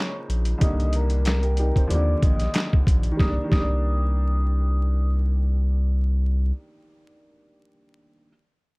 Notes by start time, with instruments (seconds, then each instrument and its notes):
Already playing: upright piano C#2 F3 G#3 A#3 D#4, vibraphone C#5 C#6
0.29 sub bass A#1, closed hi-hat
0.45 closed hi-hat
0.58 upright piano C2 D#3 G3, sub bass C2, kick, closed hi-hat
0.62 upright piano D3 A#3, vibraphone D#5 D#6
0.80 closed hi-hat
0.93 vibraphone A#4 A#5, closed hi-hat
1.10 closed hi-hat
1.25 snare, clap, closed hi-hat
1.43 upright piano G4 A#4, closed hi-hat
1.57 upright piano D#4 G4, closed hi-hat
1.75 upright piano C4 D#4, kick, closed hi-hat
1.87 upright piano D#2 F3 G3, sub bass D#2, vibraphone D5 D6, closed hi-hat
1.93 upright piano D3 A#3
2.22 sub bass A#1, vibraphone D#5 D#6, kick, closed hi-hat
2.40 snare, closed hi-hat
2.54 snare, clap, closed hi-hat
2.73 kick
2.87 sub bass A#1, kick, closed hi-hat
3.03 closed hi-hat
3.12 upright piano D#3
3.17 sub bass C2, upright piano G3, vibraphone D#6, kick, snare
3.22 upright piano A#3
3.27 upright piano D4
3.44 upright piano D#3
3.49 sub bass C2, upright piano G3, vibraphone D#6, kick, snare
3.54 upright piano A#3
3.60 upright piano D4